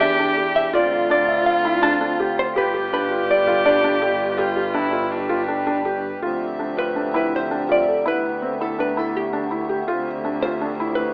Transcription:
Already playing: double bass E2, harmonium E3 D4 G4, cello G4
0.01 felt piano D4, hollow-body jazz guitar E5
0.19 felt piano D4
0.37 felt piano G4
0.56 hollow-body jazz guitar E5
0.73 double bass D2, harmonium D3 C4 F4, felt piano F4, cello F4, hollow-body jazz guitar D5
0.91 felt piano F4
1.10 felt piano D4, hollow-body jazz guitar D5
1.28 felt piano E5
1.46 hollow-body jazz guitar F5
1.65 felt piano E4
1.83 felt piano D4, hollow-body jazz guitar A5
2.01 felt piano D4
2.20 felt piano G4
2.39 hollow-body jazz guitar C5
2.56 double bass G1, harmonium G3 B4, felt piano G4, cello G4, hollow-body jazz guitar B4
2.74 felt piano G4
2.93 felt piano D4, hollow-body jazz guitar B4
3.11 felt piano F4
3.31 hollow-body jazz guitar D5
3.47 felt piano F4
3.65 felt piano D4, hollow-body jazz guitar D5
3.84 felt piano D4
4.02 felt piano G4
4.38 cello F4, felt piano G4, harmonium G4
4.56 felt piano G4
4.74 felt piano D4, cello E4
4.93 felt piano F4
5.12 cello D4
5.29 felt piano F4
5.48 felt piano D4
5.67 felt piano D4
5.85 felt piano G4
6.22 double bass D2, harmonium D3 F3 C4 G4 E5, felt piano F4
6.59 felt piano D4
6.77 felt piano F4, hollow-body jazz guitar B4
6.96 felt piano D4
7.14 felt piano E4, hollow-body jazz guitar B4
7.36 hollow-body jazz guitar C5
7.51 felt piano D4
7.69 felt piano F4, hollow-body jazz guitar D5
7.87 felt piano A4
8.06 double bass D2, harmonium B3, felt piano E4, hollow-body jazz guitar B4
8.42 felt piano C4
8.61 felt piano E4, hollow-body jazz guitar A4
8.79 felt piano D4, hollow-body jazz guitar B4
8.97 felt piano E4, hollow-body jazz guitar A4
9.17 hollow-body jazz guitar G4
9.33 felt piano D4
9.51 felt piano E4
9.69 felt piano G4
9.88 double bass D2, harmonium F3 C4, felt piano F4
10.24 felt piano D4
10.42 felt piano F4, hollow-body jazz guitar C5
10.61 felt piano D4
10.80 felt piano E4
10.95 hollow-body jazz guitar B4

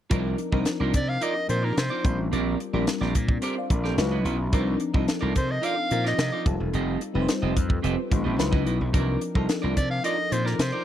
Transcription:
0.10 slap bass C2, fm electric piano F3 C4 D4 D#4 A#4, clean electric guitar D#4 F4 A#4 D5, kick, closed hi-hat
0.38 muted clean electric guitar stroke, closed hi-hat
0.52 slap bass C2, fm electric piano F3 C4 D4 D#4 A#4, clean electric guitar D#4 F4 A#4 D#5, kick
0.65 muted clean electric guitar stroke, snare, closed hi-hat
0.80 slap bass C2, clean electric guitar D#4 F4 A#4 D5
0.94 slap bass C3, soprano saxophone D5, muted clean electric guitar stroke, kick, closed hi-hat
1.07 soprano saxophone F5, muted clean electric guitar stroke
1.21 clean electric guitar D#4 F4 A#4 D5, soprano saxophone D#5, closed hi-hat
1.35 muted clean electric guitar stroke
1.48 slap bass A#2, fm electric piano F3 C4 D4 D#4 A#4, soprano saxophone C5, muted clean electric guitar stroke, closed hi-hat
1.62 clean electric guitar D#4 F4 A#4 D5, soprano saxophone A#4
1.76 slap bass C3, soprano saxophone C5, muted clean electric guitar stroke, snare, closed hi-hat
1.90 clean electric guitar D#4 F4 A#4 D5
2.03 slap bass A#1, fm electric piano G3 C4 D4 F4 A#4, muted clean electric guitar stroke, kick, closed hi-hat
2.18 slap bass A1, muted clean electric guitar stroke
2.32 slap bass A#1, clean electric guitar C4 G4 A#4 D5, closed hi-hat
2.59 muted clean electric guitar stroke, closed hi-hat
2.73 slap bass A#1, fm electric piano G3 C4 D4 F4 A#4, clean electric guitar C4 G4 A#4 D5
2.87 muted clean electric guitar stroke, snare, closed hi-hat
3.01 slap bass A#1, clean electric guitar C4 G4 A#4 D5, snare
3.15 slap bass A#2, muted clean electric guitar stroke, kick, closed hi-hat
3.28 muted clean electric guitar stroke, kick
3.42 clean electric guitar C4 G4 A#4 D5, fm electric piano A4 C5, closed hi-hat
3.56 fm electric piano D5 F5, muted clean electric guitar stroke
3.70 slap bass A#1, fm electric piano A#4 D5, muted clean electric guitar stroke, kick, closed hi-hat
3.84 clean electric guitar C4 G4 A#4 D5, fm electric piano A4 C5, snare
3.98 slap bass C#2, fm electric piano F#3 C#4 D#4 E4 B4, muted clean electric guitar stroke, snare, closed hi-hat
4.11 clean electric guitar E4 F#4 B4 D#5
4.24 slap bass B1, clean electric guitar E4 F#4 B4 D#5, closed hi-hat
4.39 muted clean electric guitar stroke
4.53 slap bass C2, fm electric piano F3 C4 D4 D#4 A#4, clean electric guitar D#4 F4 A#4 D5, kick, closed hi-hat
4.80 muted clean electric guitar stroke, closed hi-hat
4.94 slap bass C2, fm electric piano F3 C4 D4 D#4 A4, clean electric guitar D#4 F4 A#4 D#5, kick
5.07 muted clean electric guitar stroke, snare, closed hi-hat
5.21 slap bass C2, clean electric guitar D#4 F4 A#4 D5
5.34 slap bass C3, soprano saxophone C5, muted clean electric guitar stroke, kick, closed hi-hat
5.48 soprano saxophone D#5, muted clean electric guitar stroke
5.62 clean electric guitar D#4 F4 A#4 D5, soprano saxophone F5, closed hi-hat
5.76 muted clean electric guitar stroke
5.90 slap bass A#2, fm electric piano F3 C4 D#4 F4 A#4, muted clean electric guitar stroke, closed hi-hat
6.04 clean electric guitar D#4 F4 A#4 D5, soprano saxophone D#5, snare
6.18 slap bass C3, muted clean electric guitar stroke, snare, closed hi-hat
6.32 clean electric guitar D#4 F4 A#4 D5
6.45 slap bass F1, fm electric piano G3 C4 D#4 F4 A4, muted clean electric guitar stroke, kick, closed hi-hat
6.60 slap bass E1, muted clean electric guitar stroke
6.73 slap bass F1, clean electric guitar C4 G4 A4 D#5, closed hi-hat
7.01 muted clean electric guitar stroke, closed hi-hat
7.14 slap bass F1, fm electric piano G3 C4 D#4 F4 B4, clean electric guitar C4 G4 A4 D#5
7.22 fm electric piano C5
7.28 muted clean electric guitar stroke, snare, closed hi-hat
7.42 slap bass F1, clean electric guitar C4 G4 A4 D#5
7.55 slap bass F2, muted clean electric guitar stroke, kick, closed hi-hat
7.69 muted clean electric guitar stroke, kick
7.82 slap bass F1, clean electric guitar C4 G4 A4 D#5, closed hi-hat
7.96 muted clean electric guitar stroke
8.10 slap bass A1, fm electric piano G3 C4 D#4 F4 C5, muted clean electric guitar stroke, kick, closed hi-hat
8.24 slap bass A1, clean electric guitar C4 G4 A4 D#5
8.38 slap bass C#2, fm electric piano F#3 C#4 D#4 E4 B4, muted clean electric guitar stroke, snare, closed hi-hat
8.52 slap bass C#2, clean electric guitar E4 F#4 B4 D#5, kick
8.65 slap bass B1, clean electric guitar E4 F#4 B4 D#5, closed hi-hat
8.80 slap bass B1, muted clean electric guitar stroke
8.93 slap bass C2, fm electric piano F3 C4 D4 D#4 A#4, clean electric guitar D#4 F4 A#4 D5, kick, closed hi-hat
9.21 muted clean electric guitar stroke, closed hi-hat
9.34 slap bass C2, fm electric piano F3 C4 D4 D#4 A4, clean electric guitar D#4 F4 A#4 D#5, kick
9.48 muted clean electric guitar stroke, snare, closed hi-hat
9.62 slap bass C2, clean electric guitar D#4 F4 A#4 D5
9.76 slap bass C3, soprano saxophone D5, muted clean electric guitar stroke, kick, closed hi-hat
9.90 soprano saxophone F5, muted clean electric guitar stroke
10.04 clean electric guitar D#4 F4 A#4 D5, soprano saxophone D#5, closed hi-hat
10.18 muted clean electric guitar stroke
10.31 slap bass A#2, fm electric piano F3 C4 D4 D#4 C5, soprano saxophone C5, muted clean electric guitar stroke, closed hi-hat
10.45 clean electric guitar D#4 F4 A#4 D5, soprano saxophone A#4, snare
10.59 slap bass C3, soprano saxophone C5, muted clean electric guitar stroke, snare, closed hi-hat
10.72 clean electric guitar D#4 F4 A#4 D5

